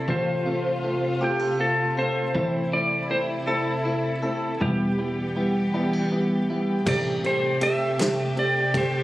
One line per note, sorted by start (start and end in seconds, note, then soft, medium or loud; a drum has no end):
0.00 4.56 C3 medium
0.00 4.56 A3 medium
0.00 0.16 E4 soft
0.00 1.21 A4 medium
0.07 2.30 A1 medium
0.07 0.34 A3 medium
0.07 0.45 C4 medium
0.07 0.34 C4 medium
0.07 2.32 F4 medium
0.07 0.34 F4 medium
0.07 1.26 C5 medium
0.46 0.72 A3 medium
0.46 2.34 C4 soft
0.46 0.72 C4 medium
0.46 0.72 F4 medium
0.83 1.10 A3 medium
0.83 1.10 C4 medium
0.83 1.58 F4 soft
0.83 1.10 F4 medium
1.21 1.47 A3 medium
1.21 1.47 C4 medium
1.21 1.48 F4 medium
1.21 1.40 G4 medium
1.21 1.60 G4 medium
1.40 1.96 A4 soft
1.59 1.85 A3 medium
1.59 1.85 C4 medium
1.59 2.42 F4 soft
1.59 1.85 F4 medium
1.59 1.95 A4 medium
1.97 2.23 A3 medium
1.97 2.23 C4 medium
1.97 2.23 F4 medium
1.97 3.47 A4 medium
1.97 2.69 C5 medium
2.34 4.57 A1 medium
2.34 2.61 A3 medium
2.34 2.71 C4 medium
2.34 2.61 C4 medium
2.34 4.58 E4 medium
2.34 2.61 E4 medium
2.72 2.98 A3 medium
2.72 4.68 C4 soft
2.72 2.98 C4 medium
2.72 2.99 E4 medium
2.72 3.12 D5 medium
3.10 3.36 A3 medium
3.10 3.36 C4 medium
3.10 3.84 E4 soft
3.10 3.36 E4 medium
3.10 3.21 C5 medium
3.47 3.73 A3 medium
3.47 3.73 C4 medium
3.47 3.74 E4 medium
3.47 4.21 A4 medium
3.47 4.62 A4 medium
3.85 4.11 A3 medium
3.85 4.11 C4 medium
3.85 5.74 E4 soft
3.85 4.11 E4 medium
4.23 4.49 A3 medium
4.23 4.49 C4 medium
4.23 4.49 E4 medium
4.23 4.68 A4 medium
4.60 6.83 E1 medium
4.60 6.84 E3 medium
4.60 4.98 G3 medium
4.60 4.87 G3 medium
4.60 6.84 B3 medium
4.60 4.87 B3 medium
4.60 4.87 E4 medium
4.60 6.84 G4 medium
4.60 6.08 G4 medium
4.98 5.24 G3 medium
4.98 7.45 G3 medium
4.98 5.24 B3 soft
4.98 5.24 E4 medium
5.36 5.62 G3 medium
5.36 5.62 B3 medium
5.36 6.11 B3 soft
5.36 5.62 E4 medium
5.74 6.00 G3 medium
5.74 6.00 B3 medium
5.74 5.93 D4 medium
5.74 6.00 E4 medium
5.93 6.49 E4 soft
6.12 6.37 G3 medium
6.12 6.94 B3 soft
6.12 6.38 B3 soft
6.12 6.38 E4 medium
6.49 6.75 G3 medium
6.49 6.75 B3 soft
6.49 7.45 E4 soft
6.49 6.75 E4 medium
6.85 9.03 A1 medium
6.85 9.03 C3 medium
6.85 9.03 A3 medium
6.85 7.12 A3 medium
6.85 7.12 C4 medium
6.85 9.03 G4 medium
6.85 7.12 G4 medium
6.85 6.98 D5 medium
6.85 kick loud
6.85 crash medium
7.23 7.50 A3 medium
7.23 7.50 C4 medium
7.23 7.50 G4 medium
7.23 7.64 C5 medium
7.23 ride soft
7.61 7.87 A3 medium
7.61 7.87 C4 medium
7.61 7.88 G4 medium
7.61 8.40 E5 loud
7.61 ride medium
7.99 8.25 A3 medium
7.99 8.25 C4 medium
7.99 8.25 G4 medium
7.99 snare loud
7.99 ride medium
8.36 8.63 A3 medium
8.36 8.63 C4 medium
8.36 8.63 G4 medium
8.36 8.77 D5 medium
8.36 ride soft
8.74 9.00 A3 medium
8.74 9.00 C4 medium
8.74 9.00 G4 medium
8.74 9.03 C5 loud
8.74 kick medium
8.74 ride medium